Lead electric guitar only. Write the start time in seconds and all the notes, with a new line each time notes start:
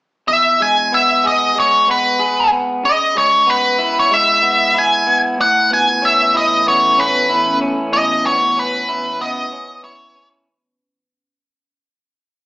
0.28 E5
0.62 G#5
0.94 E5
1.27 D#5
1.60 C#5
1.91 B4
2.85 D#5
3.18 C#5
3.50 B4
3.99 C#5
4.14 E5
4.79 G#5
5.41 F#5
5.73 G#5
6.05 E5
6.37 D#5
6.68 C#5
7.00 B4
7.93 D#5
8.26 C#5
8.59 B4
9.21 D#5
9.84 C#5